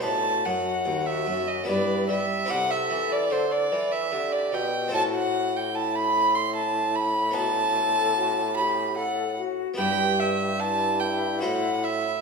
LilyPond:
<<
  \new Staff \with { instrumentName = "Violin" } { \time 3/4 \key e \minor \tempo 4 = 74 a''8 fis''8. e''8 dis''16 d''8 e''8 | fis''16 e''8 d''16 c''16 d''8 e''8 d''16 g''8 | a''16 fis''8 g''16 a''16 b''8 c'''16 a''8 b''8 | a''4. b''8 fis''8 r8 |
g''8 e''8 a''8 g''8 fis''8 e''8 | }
  \new Staff \with { instrumentName = "Flute" } { \time 3/4 \key e \minor fis'2 b'8 r8 | a'2 g'4 | fis'4 e'2 | fis'8 a'8 fis'8 g'8 a'8 fis'8 |
g'8 r8 e'2 | }
  \new Staff \with { instrumentName = "Harpsichord" } { \time 3/4 \key e \minor <b dis' b'>2 <b e' b'>4 | <c' e' g'>2. | <c' e' a'>2. | <b dis' b'>2. |
<b e' b'>2 <fis' c''>4 | }
  \new Staff \with { instrumentName = "Harpsichord" } { \clef bass \time 3/4 \key e \minor a,8 fis,8 dis,8 fis,8 g,8 g8 | c8 e8 d8 e8 d8 b,8 | a,2.~ | a,2. |
g,2 a,4 | }
  \new Staff \with { instrumentName = "Bassoon" } { \clef bass \time 3/4 \key e \minor a,8 fis,8 dis,8 fis,8 g,8 g8 | c8 e8 d8 e8 d8 b,8 | a,2.~ | a,2. |
g,2 a,4 | }
>>